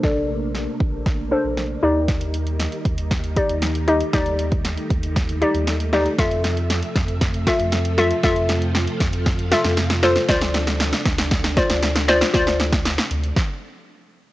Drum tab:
HH |----------------|xxxxxxxxxxxxxxxx|xxxxxxxxxxxxxxxx|xxxxxxxxxxxxxxxx|
SD |o---o---o---o---|o---o---o---o---|o---o---o---o-o-|o-o-o-o-o-o-o-o-|
BD |o-----o-o-------|o-----o-o-o-----|o--o--o-o-------|o-----o-o-o-----|

HH |xxxxxxxxxxxxxxxx|xxxxxxxxxxxxxxxx|xxxxxxxx--------|
SD |o-o-o-o-o-oooooo|oooooooooooooooo|oooooo--o-------|
BD |o-----o-o-------|o-----o-o-o-----|o--o----o-------|